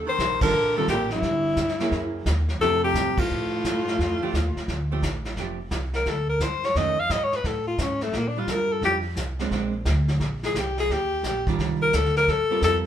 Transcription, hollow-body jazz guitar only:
0.42 D#3 G3 D4 F4
0.77 D#3 G3 D4 F4
1.81 F#3 A#3 E4 G#4
2.62 F3 A3 D4 G4
4.23 F3 A3 D4 G4
4.92 F3 A3 D4 G4
5.39 F3 A3 D4 G4
6.77 D#3 A3 C#4
8.37 G3 D4 F4
8.84 G3 D4 F4
9.40 G#3 C4 D4
9.53 G#3 C4 D4
11.48 D#3 G3 D4 F4
12.51 G3 C4 F4 A#4

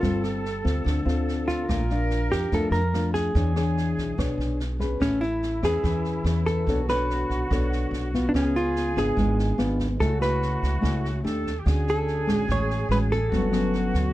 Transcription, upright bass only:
0.03 G1
0.65 D2
0.86 D2
1.06 D2
1.69 A#1
2.32 F2
2.52 F2
2.71 F2
3.35 E2
3.97 B1
4.18 B1
4.38 B1
5.01 A1
5.63 E2
5.84 E2
6.24 E2
6.67 B1
7.30 B1
7.50 B1
7.91 B1
8.34 C#2
8.96 G#1
9.17 G#1
9.58 G#1
10.00 C#2
10.63 C#2
10.83 C#2
11.25 D#2
11.66 D2
12.28 A1
12.49 A1
12.89 A1
13.32 G1
13.94 D2

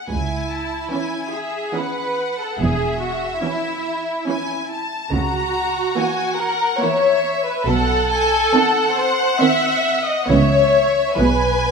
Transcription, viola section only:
0.92 E3 C#4
1.76 E3 C#4
3.44 E3 C#4
4.28 E3 C#4
5.97 E3 A#3
6.83 E3 A#3
8.53 D#3 C4
9.42 D#3 C4
10.30 E3 B3
11.18 E3 G#3

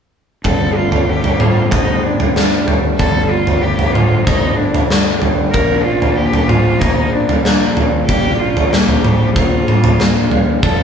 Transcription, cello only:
0.45 A4
0.77 F4
1.09 G4
1.40 F4
1.71 D#4
2.03 D4
2.34 D4
2.98 A4
3.31 F4
3.62 G4
3.93 F4
4.25 D#4
4.56 D4
4.88 D4
5.52 A#4
5.84 F4
6.16 G4
6.49 F4
6.79 D#4
7.12 D4
7.44 D4
8.07 G4
8.39 F4
8.71 G4
9.35 F4
10.64 A4

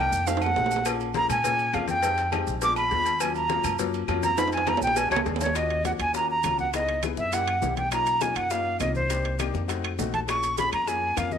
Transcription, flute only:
Already playing: G5
0.27 F5
0.42 F#5
1.16 A#5
1.31 G#5
1.74 F5
1.89 G5
2.63 D6
2.77 B5
3.21 G#5
3.36 A#5
4.24 A#5
4.39 B5
4.53 G#5
4.68 A#5
4.83 G5
4.97 G#5
5.11 C#5
5.41 C#5
5.56 D#5
5.86 F#5
6.01 G#5
6.16 A#5
6.31 A#5
6.60 F#5
6.75 D#5
7.18 E5
7.34 F#5
7.78 G5
7.93 A#5
8.22 G#5
8.36 F#5
8.51 F5
8.80 D#5
8.96 C5
10.14 A5
10.29 C#6
10.59 B5
10.73 A#5
10.88 G#5
11.18 F5
11.32 D#5

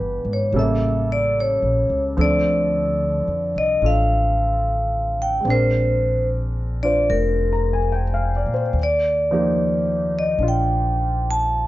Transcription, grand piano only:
Already playing: E3 B3 D4 G4
0.54 C#3 G3 A#3 A4
2.17 D3 F3 C4 A4
3.82 D4 F4 A4
5.41 G#3
5.45 C4 D4
5.52 A#4
6.83 D4 F4 C5
7.53 A#5
7.73 G#5
7.92 G5
8.14 F5
8.36 D5
8.54 C5
9.31 F3 A#3 D#4 G4
10.40 D4 F4

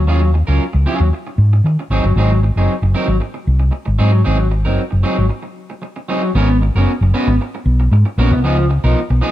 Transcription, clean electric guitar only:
0.07 F#3 C#4 F4 G#4
0.22 muted clean electric guitar stroke
0.34 muted clean electric guitar stroke
0.47 F#3 C#4 F4 A#4
0.73 muted clean electric guitar stroke
0.86 F#3 C#4 F4 G#4
1.01 muted clean electric guitar stroke
1.13 muted clean electric guitar stroke
1.27 muted clean electric guitar stroke
1.53 muted clean electric guitar stroke
1.66 muted clean electric guitar stroke
1.79 muted clean electric guitar stroke
1.91 F#3 C4 D#4 G#4
2.05 muted clean electric guitar stroke
2.17 F#3 C4 D#4 G#4
2.32 muted clean electric guitar stroke
2.43 muted clean electric guitar stroke
2.57 F#3 C4 D#4 G#4
2.83 muted clean electric guitar stroke
2.95 F#3 C4 D#4 A#4
3.08 muted clean electric guitar stroke
3.20 muted clean electric guitar stroke
3.34 muted clean electric guitar stroke
3.60 muted clean electric guitar stroke
3.71 muted clean electric guitar stroke
3.86 muted clean electric guitar stroke
3.99 F#3 C4 D#4 G#4
4.12 muted clean electric guitar stroke
4.24 F#3 C4 D#4 G#4
4.39 muted clean electric guitar stroke
4.51 muted clean electric guitar stroke
4.65 F#3 C4 D#4 A#4
4.91 muted clean electric guitar stroke
5.03 F#3 C4 D#4 G#4
5.17 muted clean electric guitar stroke
5.29 muted clean electric guitar stroke
5.43 muted clean electric guitar stroke
5.70 muted clean electric guitar stroke
5.82 muted clean electric guitar stroke
5.96 muted clean electric guitar stroke
6.09 F#3 C4 D#4 G#4
6.23 muted clean electric guitar stroke
6.35 B3 C#4 F#4 A#4
6.49 muted clean electric guitar stroke
6.62 muted clean electric guitar stroke
6.76 B3 C#4 F#4 A#4
7.03 muted clean electric guitar stroke
7.14 B3 C#4 F#4 B4
7.28 muted clean electric guitar stroke
7.41 muted clean electric guitar stroke
7.55 muted clean electric guitar stroke
7.80 muted clean electric guitar stroke
7.93 muted clean electric guitar stroke
8.05 muted clean electric guitar stroke
8.19 B3 C#4 F#4 A#4
8.32 muted clean electric guitar stroke
8.44 F3 B3 D#4 G#4
8.58 muted clean electric guitar stroke
8.70 muted clean electric guitar stroke
8.84 F3 B3 D#4 A#4
9.10 muted clean electric guitar stroke
9.21 F3 B3 D#4 G#4

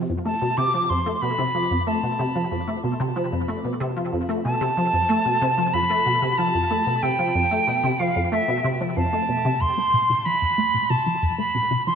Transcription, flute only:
0.26 A5
0.57 D6
0.90 C6
1.22 B5
1.87 A5
4.45 A5
5.74 B5
6.38 A5
7.03 G5
7.99 F5
8.32 E5
8.97 A5
9.61 C6
10.25 B5
10.90 A5
11.38 B5
11.87 C6

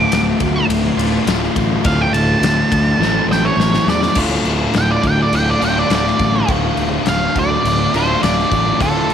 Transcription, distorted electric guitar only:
Already playing: D2 A2 D3 A3 F4
0.98 D2 A2 D3 A3 F4
1.27 D2 A2 D3 A3 F4
1.84 D2 A2 D3 A3 F4
3.00 A2 E3 A3 C4 E4 A4
4.15 D2 A2 D3 A3 F4
5.61 D2 A2 D3 A3 F4
5.89 D2 A2 D3 A3 F4
6.48 D2 A2 D3 A3 F4
7.93 D2 A2 D3 A3 F4
8.21 D2 A2 D3 A3 F4
8.79 D2 A2 D3 A3 F4

